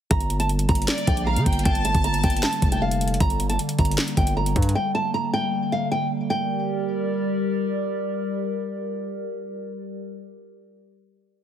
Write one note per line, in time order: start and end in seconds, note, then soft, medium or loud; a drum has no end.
0.11 0.67 G1 loud
0.11 6.26 D3 medium
0.11 6.26 G3 medium
0.11 6.26 A#3 medium
0.11 0.38 A#5 loud
0.11 kick loud
0.11 closed hi-hat medium
0.20 closed hi-hat medium
0.30 closed hi-hat medium
0.40 0.48 A5 medium
0.40 closed hi-hat medium
0.49 closed hi-hat medium
0.59 closed hi-hat medium
0.69 0.87 G1 loud
0.69 0.85 A#5 medium
0.69 kick medium
0.69 closed hi-hat medium
0.75 closed hi-hat medium
0.82 closed hi-hat medium
0.88 1.25 D5 loud
0.88 snare loud
0.88 clap loud
0.88 closed hi-hat medium
0.98 closed hi-hat medium
1.07 1.38 A#1 loud
1.07 1.23 G5 medium
1.07 kick loud
1.07 closed hi-hat medium
1.17 closed hi-hat medium
1.27 1.45 F5 medium
1.27 1.63 A#5 medium
1.36 1.46 D3 loud
1.36 closed hi-hat medium
1.46 1.65 G1 loud
1.46 1.65 G5 medium
1.46 kick medium
1.46 closed hi-hat medium
1.53 closed hi-hat medium
1.59 closed hi-hat medium
1.65 1.93 G1 loud
1.65 1.81 G5 medium
1.65 2.78 A5 loud
1.65 kick loud
1.65 closed hi-hat medium
1.75 closed hi-hat soft
1.85 2.01 A5 medium
1.85 closed hi-hat medium
1.95 2.23 G1 loud
1.95 kick loud
1.95 closed hi-hat medium
2.04 2.20 A#5 medium
2.04 closed hi-hat medium
2.14 closed hi-hat medium
2.24 2.42 G1 loud
2.24 2.39 G5 medium
2.24 kick medium
2.24 closed hi-hat medium
2.30 closed hi-hat medium
2.37 closed hi-hat medium
2.43 2.70 A5 medium
2.43 snare loud
2.43 clap loud
2.43 closed hi-hat medium
2.53 closed hi-hat medium
2.62 3.18 F1 loud
2.62 kick loud
2.62 closed hi-hat medium
2.72 2.80 G5 medium
2.72 closed hi-hat medium
2.82 3.18 F5 medium
2.91 closed hi-hat medium
3.01 closed hi-hat medium
3.08 closed hi-hat medium
3.14 closed hi-hat medium
3.20 3.58 G1 loud
3.20 3.48 A#5 loud
3.20 kick loud
3.20 closed hi-hat medium
3.30 closed hi-hat soft
3.40 closed hi-hat medium
3.50 3.57 A5 medium
3.50 closed hi-hat medium
3.59 closed hi-hat medium
3.69 closed hi-hat medium
3.79 3.97 G1 loud
3.79 3.94 A#5 medium
3.79 kick medium
3.79 closed hi-hat medium
3.85 closed hi-hat medium
3.91 closed hi-hat medium
3.98 snare loud
3.98 clap loud
3.98 closed hi-hat medium
4.08 closed hi-hat medium
4.17 4.54 G1 loud
4.17 4.33 G5 medium
4.17 kick loud
4.17 closed hi-hat medium
4.27 closed hi-hat medium
4.37 4.73 A#5 medium
4.46 closed hi-hat medium
4.56 4.74 G2 loud
4.56 kick loud
4.56 closed hi-hat medium
4.62 closed hi-hat medium
4.69 closed hi-hat medium
4.75 4.91 G5 medium
4.95 5.10 A5 medium
5.14 5.30 A#5 medium
5.33 5.70 G5 loud
5.72 5.88 F5 medium
5.92 6.07 G5 medium
6.30 9.83 G3 medium
6.30 9.83 G4 medium
6.30 9.83 A#4 medium
6.30 9.83 D5 medium
6.30 7.42 G5 medium